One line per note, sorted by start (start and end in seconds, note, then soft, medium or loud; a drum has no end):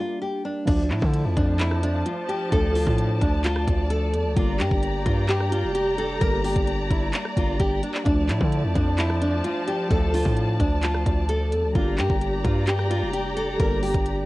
0.00 0.69 G3 medium
0.00 0.69 A#3 medium
0.00 0.69 D4 medium
0.00 0.19 F4 medium
0.22 0.42 G4 medium
0.45 0.65 D4 medium
0.65 0.92 D2 loud
0.65 2.47 F3 medium
0.65 4.33 F3 medium
0.65 2.48 A3 medium
0.65 0.87 D4 loud
0.65 11.71 D5 medium
0.65 4.33 A5 medium
0.65 kick loud
0.65 closed hi-hat medium
0.65 crash loud
0.70 2.50 D4 medium
0.90 1.01 A2 loud
0.90 1.34 E4 medium
0.90 clap loud
0.90 closed hi-hat medium
1.02 1.26 D3 loud
1.02 kick loud
1.13 closed hi-hat medium
1.25 1.36 F2 loud
1.37 2.03 F2 loud
1.37 1.57 D4 medium
1.37 kick loud
1.37 closed hi-hat medium
1.59 1.80 E4 medium
1.59 clap loud
1.59 closed hi-hat medium
1.71 cross-stick medium
1.83 2.03 D4 medium
1.83 closed hi-hat medium
2.06 2.26 F4 medium
2.06 closed hi-hat medium
2.28 2.49 G4 medium
2.28 closed hi-hat medium
2.50 2.85 D2 loud
2.50 4.32 F3 medium
2.50 4.33 A3 medium
2.50 2.72 A4 loud
2.50 kick loud
2.50 closed hi-hat medium
2.54 4.34 D4 medium
2.75 3.19 F4 medium
2.75 open hi-hat medium
2.87 3.20 A2 loud
2.87 kick loud
2.98 closed hi-hat medium
3.21 3.66 D2 loud
3.21 3.41 D4 medium
3.21 kick loud
3.21 closed hi-hat medium
3.44 3.88 F4 medium
3.44 clap loud
3.44 closed hi-hat medium
3.56 cross-stick medium
3.68 4.15 D2 loud
3.68 kick medium
3.68 closed hi-hat loud
3.90 4.11 A4 medium
3.90 closed hi-hat medium
4.14 4.27 E2 loud
4.14 closed hi-hat medium
4.25 4.36 D2 loud
4.34 4.61 G1 loud
4.34 6.16 G3 medium
4.34 6.18 A#3 medium
4.34 4.57 F4 loud
4.34 8.02 G4 medium
4.34 8.02 A#5 loud
4.34 kick loud
4.34 closed hi-hat medium
4.39 6.19 D4 medium
4.60 4.71 G2 loud
4.60 5.03 G4 medium
4.60 clap loud
4.60 closed hi-hat medium
4.71 5.05 G1 loud
4.71 kick loud
4.83 closed hi-hat medium
5.06 5.65 G2 loud
5.06 5.26 F4 medium
5.06 kick loud
5.06 closed hi-hat medium
5.29 5.49 G4 medium
5.29 clap loud
5.29 closed hi-hat medium
5.41 cross-stick medium
5.52 5.72 F4 medium
5.52 closed hi-hat loud
5.64 6.18 F1 loud
5.75 5.95 G4 medium
5.75 closed hi-hat medium
5.98 6.18 A4 medium
5.98 closed hi-hat medium
6.19 6.55 G1 loud
6.19 7.33 G3 medium
6.19 7.34 A#3 medium
6.19 6.41 A#4 loud
6.19 kick loud
6.19 closed hi-hat medium
6.24 7.36 D4 medium
6.44 6.88 G4 medium
6.44 closed hi-hat soft
6.44 open hi-hat medium
6.56 6.89 G1 loud
6.56 kick loud
6.56 closed hi-hat medium
6.67 closed hi-hat medium
6.91 7.13 G1 loud
6.91 7.11 E4 medium
6.91 kick loud
6.91 closed hi-hat medium
7.13 clap loud
7.13 closed hi-hat medium
7.25 cross-stick medium
7.36 7.59 G1 loud
7.36 8.05 G3 medium
7.36 8.06 A#3 soft
7.36 8.07 D4 medium
7.36 7.57 F4 medium
7.36 kick medium
7.36 closed hi-hat medium
7.60 7.82 G1 loud
7.60 7.80 G4 medium
7.60 kick medium
7.60 closed hi-hat medium
7.83 8.03 D4 medium
7.83 closed hi-hat medium
7.94 clap loud
8.04 8.31 D2 loud
8.04 9.86 F3 medium
8.04 11.72 F3 medium
8.04 9.87 A3 medium
8.04 8.26 D4 loud
8.04 11.72 A5 loud
8.04 kick loud
8.04 closed hi-hat medium
8.08 9.88 D4 medium
8.29 8.40 A2 loud
8.29 8.72 E4 medium
8.29 clap loud
8.29 closed hi-hat medium
8.41 8.65 D3 loud
8.41 kick loud
8.52 closed hi-hat medium
8.64 8.75 F2 loud
8.75 9.42 F2 loud
8.75 8.95 D4 medium
8.75 kick loud
8.75 closed hi-hat medium
8.98 9.19 E4 medium
8.98 clap loud
8.98 closed hi-hat medium
9.10 cross-stick medium
9.22 9.42 D4 medium
9.22 closed hi-hat loud
9.44 9.65 F4 medium
9.44 closed hi-hat medium
9.68 9.88 G4 medium
9.68 closed hi-hat medium
9.88 10.24 D2 loud
9.88 11.70 F3 medium
9.88 11.72 A3 medium
9.88 10.11 A4 loud
9.88 kick loud
9.88 closed hi-hat medium
9.93 11.73 D4 medium
10.14 10.57 F4 medium
10.14 open hi-hat medium
10.25 10.58 A2 loud
10.25 kick loud
10.37 closed hi-hat medium
10.60 11.04 D2 loud
10.60 10.80 D4 medium
10.60 kick loud
10.60 closed hi-hat medium
10.83 11.26 F4 medium
10.83 clap loud
10.83 closed hi-hat medium
10.94 cross-stick medium
11.06 11.54 D2 loud
11.06 kick medium
11.06 closed hi-hat loud
11.29 11.49 A4 medium
11.29 closed hi-hat medium
11.52 11.65 E2 loud
11.52 closed hi-hat medium
11.64 11.75 D2 loud
11.73 12.00 G1 loud
11.73 13.55 G3 medium
11.73 13.56 A#3 medium
11.73 11.95 F4 loud
11.73 14.26 G4 medium
11.73 14.26 D5 medium
11.73 14.26 A#5 medium
11.73 kick loud
11.73 closed hi-hat medium
11.78 13.57 D4 medium
11.98 12.09 G2 loud
11.98 12.42 G4 medium
11.98 clap loud
11.98 closed hi-hat medium
12.10 12.43 G1 loud
12.10 kick loud
12.21 closed hi-hat medium
12.44 13.04 G2 loud
12.44 12.65 F4 medium
12.44 kick loud
12.44 closed hi-hat medium
12.67 12.88 G4 medium
12.67 clap loud
12.67 closed hi-hat medium
12.79 cross-stick medium
12.91 13.11 F4 medium
12.91 closed hi-hat medium
13.02 13.57 F1 loud
13.13 13.34 G4 medium
13.13 closed hi-hat medium
13.37 13.57 A4 medium
13.37 closed hi-hat medium
13.58 13.93 G1 loud
13.58 14.26 G3 medium
13.58 14.26 A#3 medium
13.58 13.80 A#4 loud
13.58 kick loud
13.58 closed hi-hat medium
13.62 14.26 D4 medium
13.83 14.26 G4 medium
13.83 closed hi-hat soft
13.83 open hi-hat medium
13.94 14.26 G1 loud
13.94 kick loud
13.94 closed hi-hat medium
14.06 closed hi-hat medium